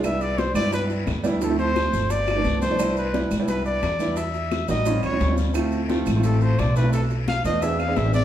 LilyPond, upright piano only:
\new Staff \with { instrumentName = "Upright piano" } { \time 4/4 \key c \major \tempo 4 = 174 <g b d' e'>4 r8 <g b d' e'>16 r16 <g b d' e'>4 r8 <g b d' e'>16 r16 | <f a c' e'>16 <f a c' e'>4. r4 <f a b d'>8. r16 <f a b d'>16 | <g b d' e'>8. r16 <g b d' e'>8 r16 <g b d' e'>4~ <g b d' e'>16 r8 <g b d' e'>8 | r4. <g bes d' fis'>16 r16 <g bis cis' eis'>8 r16 <g bis cis' eis'>16 r16 <g bis cis' eis'>8 r16 |
<a c' e' f'>8. r16 <a c' e' f'>8 r16 <a c' e' f'>4~ <a c' e' f'>16 r8 <a c' e' f'>8 | r4. <a b d' f'>16 r16 <b c' d' gis'>8 r16 <b c' d' gis'>16 r16 <b c' d' gis'>8 r16 | }